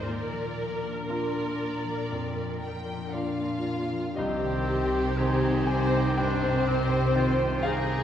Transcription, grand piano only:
<<
  \new Staff \with { instrumentName = "Grand piano" } { \time 4/4 \key c \minor \tempo 4 = 60 r2. d''4 | ees''4. aes''8 g''4. f''8 | }
  \new Staff \with { instrumentName = "Grand piano" } { \time 4/4 \key c \minor bes,4 <bes d' f'>4 f,4 <bes d' f'>4 | c,4 <ees c' c''>4 g,4 <ees c' c''>4 | }
>>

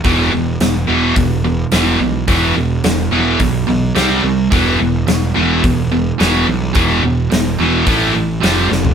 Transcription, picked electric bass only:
\new Staff \with { instrumentName = "Picked electric bass" } { \clef bass \time 4/4 \key e \phrygian \tempo 4 = 107 e,,8 e,,8 e,,8 e,,8 e,,4 e,,8 b,,8 | e,,8 e,,8 e,,8 e,,8 b,,8 b,,8 c,8 c,8 | e,,8 e,,8 e,,8 e,,8 e,,4 e,,8 b,,8 | e,,8 e,,8 e,,8 e,,8 a,,8 a,,8 f,,8 f,,8 | }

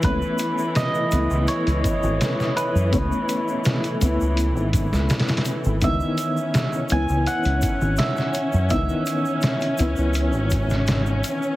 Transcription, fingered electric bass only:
\new Staff \with { instrumentName = "Fingered electric bass" } { \clef bass \time 4/4 \key cis \minor \tempo 4 = 83 cis,16 r4 r16 cis,16 cis,16 r16 cis,16 r16 gis,,16 r8. fis,16 | cis,16 r4 r16 cis,16 cis,8 gis,,8 cis,16 r8. gis,,16 | cis,16 r4 r16 cis,16 cis,16 r16 cis,16 r16 gis,,16 r8. fis,16 | cis,16 r4 r16 cis,16 cis,8 gis,,4~ gis,,16 r8 | }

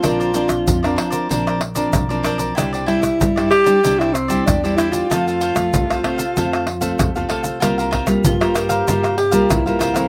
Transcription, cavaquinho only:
\new Staff \with { instrumentName = "Cavaquinho" } { \time 4/4 \key c \mixolydian \tempo 4 = 95 <d' bes' c'' d''>16 <bes' c'' d''>16 <d' bes' c'' d''>16 r8 <bes' c'' d''>16 <d' bes' c'' d''>16 <bes' c'' d''>16 <d' bes' c'' d''>16 <bes' c'' d''>16 r16 <bes' c'' d''>8 <bes' c'' d''>16 <d' bes' c'' d''>16 <bes' c'' d''>16 | <e' g' c'' d''>16 <g' c'' d''>16 <e' g' c'' d''>16 r8 <g' c'' d''>16 <e' g' c'' d''>16 <g' c'' d''>16 <e' g' c'' d''>16 <g' c'' d''>16 r16 <g' c'' d''>8 <g' c'' d''>16 <e' g' c'' d''>16 <g' c'' d''>16 | <f' a' c'' f''>16 <a' c'' f''>16 <f' a' c'' f''>16 r8 <a' c'' f''>16 <f' a' c'' f''>16 <a' c'' f''>16 <f' a' c'' f''>16 <a' c'' f''>16 r16 <a' c'' f''>8 <a' c'' f''>16 <f' a' c'' f''>16 <a' c'' f''>16 | <f' bes' c'' f''>16 <bes' c'' f''>16 <f' bes' c'' f''>16 r8 <bes' c'' f''>16 <f' bes' c'' f''>16 <bes' c'' f''>16 <f' bes' c'' f''>16 <bes' c'' f''>16 r16 <bes' c'' f''>8 <bes' c'' f''>16 <f' bes' c'' f''>16 <bes' c'' f''>16 | }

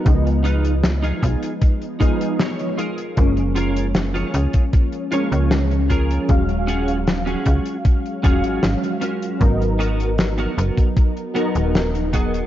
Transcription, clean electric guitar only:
\new Staff \with { instrumentName = "Clean electric guitar" } { \time 4/4 \key gis \dorian \tempo 4 = 77 << { r2. cis''4 | r1 | r1 | r1 | } \\ { r8 <dis' eis' b'>8 r16 <dis' eis' gis'>8. r8 <dis' eis' gis'>8 r8 <eis' gis' ais'>8~ | <eis' gis' ais'>16 r16 <eis' gis' ais'>8 r16 <eis' gis' cis''>8. r8 <eis' gis' cis''>8 r8 <eis' gis' ais'>8 | r8 <cis' eis' fis' gis'>8 r16 <cis' eis' fis' gis'>8. r8 <cis' eis' fis' gis'>8 r8 <cis' eis' fis' ais'>8 | r8 <b fis' ais'>8 r16 <b fis' ais'>8. r8 <b fis' ais'>8 r8 <b fis' gis'>8 | } >> }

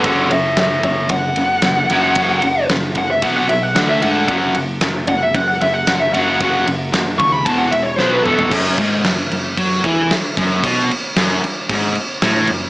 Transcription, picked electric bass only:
\new Staff \with { instrumentName = "Picked electric bass" } { \clef bass \time 4/4 \key fis \minor \tempo 4 = 113 fis,,8 fis,,8 fis,,8 fis,,8 fis,,8 fis,,8 fis,,8 fis,,8 | fis,,8 fis,,8 fis,,8 fis,,8 b,,8 b,,8 d,8 gis,8 | fis,,8 fis,,8 fis,,8 fis,,8 fis,,8 fis,,8 fis,,8 fis,,8 | fis,,8 fis,,8 fis,,8 dis,8 e,,8 e,,8 b,,8 e,,8 |
fis,,8 gis,,8 fis,,8 fis,,8 fis,8 e,8 r8 fis,,8 | b,,8 r8 fis,,8 r8 gis,,8 r8 a,,8 fis,,8 | }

